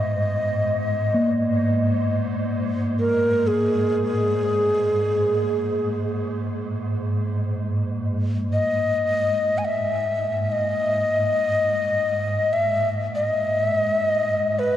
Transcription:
Already playing: synth drone G#2, singing bowl B3, native american-style wooden flute D#5
1.14 singing bowl A#3
3.00 native american-style wooden flute A#4
3.47 native american-style wooden flute G#4
7.82 synth drone G#2
8.53 native american-style wooden flute D#5
9.58 native american-style wooden flute G#5
9.66 native american-style wooden flute E5
10.52 native american-style wooden flute D#5
12.53 native american-style wooden flute E5
13.15 native american-style wooden flute D#5
14.59 native american-style wooden flute B4

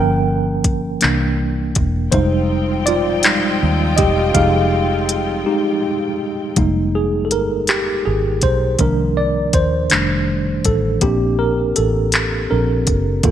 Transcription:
Already playing: fingered electric bass G1, tine electric piano F3 A#3 C#4 A#4 G5
0.64 kick, closed hi-hat
1.01 fingered electric bass C2, tine electric piano E3 A#3 D4, clap, closed hi-hat
1.75 fingered electric bass E1, kick, closed hi-hat
2.12 fingered electric bass F1, string section F3 C4 D#4 F4 G5, tine electric piano G3 G#3 D#4 C5, kick, closed hi-hat
2.86 tine electric piano F4 D5, closed hi-hat
3.23 tine electric piano G3 G#3 D#4, clap, closed hi-hat
3.63 fingered electric bass D#2
3.97 fingered electric bass E1, tine electric piano G4 D#5, kick, closed hi-hat
4.34 fingered electric bass F1, tine electric piano G#3 D#4 G4 G#4 F5, kick, closed hi-hat
5.09 closed hi-hat
5.46 tine electric piano G#3 D#4 G4
6.56 fingered electric bass F1, tine electric piano G3 G#3 A#3 D#4, kick, closed hi-hat
6.95 tine electric piano G#4
7.25 tine electric piano A4
7.31 fingered electric bass G1, tine electric piano A#4, closed hi-hat
7.67 tine electric piano G4, clap, closed hi-hat
8.06 fingered electric bass G#1, tine electric piano G#4
8.42 fingered electric bass B1, tine electric piano C5, kick, closed hi-hat
8.79 fingered electric bass C2, tine electric piano D#3 F3 A#3 D4 A#4, kick, closed hi-hat
9.17 tine electric piano D5
9.53 fingered electric bass D#2, tine electric piano C5, kick, closed hi-hat
9.90 fingered electric bass F1, tine electric piano D#3 G3 A3 D4, clap, closed hi-hat
10.65 fingered electric bass A1, tine electric piano A4, kick, closed hi-hat
11.01 fingered electric bass A#1, tine electric piano A#3 C4 D4 G4, kick, closed hi-hat
11.39 tine electric piano A#4
11.76 fingered electric bass A1, tine electric piano A4, closed hi-hat
12.12 clap, closed hi-hat
12.50 fingered electric bass A#1, tine electric piano C4 D4 A4 A#4
12.87 fingered electric bass F#1, kick, closed hi-hat
13.23 fingered electric bass G1, tine electric piano A#3 F4 A4, kick, closed hi-hat

